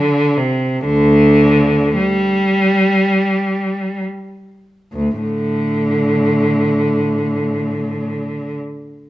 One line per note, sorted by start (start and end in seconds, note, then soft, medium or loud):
0.00 0.38 D3 medium
0.37 0.84 C3 medium
0.85 1.93 D2 medium
0.85 1.95 D3 medium
1.96 4.02 G3 medium
4.93 5.21 D2 soft
5.20 8.14 A2 soft
5.20 8.57 D3 soft